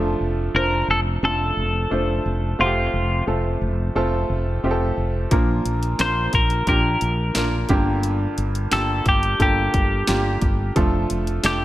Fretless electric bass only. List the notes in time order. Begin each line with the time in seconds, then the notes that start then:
Already playing: F1
0.21 F1
0.54 F1
0.88 F1
1.23 F1
1.57 F1
1.91 F1
2.26 F1
2.60 F1
2.94 F1
3.27 F1
3.61 F1
3.96 F1
4.30 F1
4.64 F1
4.97 F1
5.32 A#1
5.66 A#1
6.00 A#1
6.33 A#1
6.67 A#1
7.02 A#1
7.36 A#1
7.70 G1
8.38 G1
8.72 G1
9.06 G1
9.40 G1
9.74 G1
10.09 G1
10.42 G1
10.76 F1
11.11 F1
11.44 F1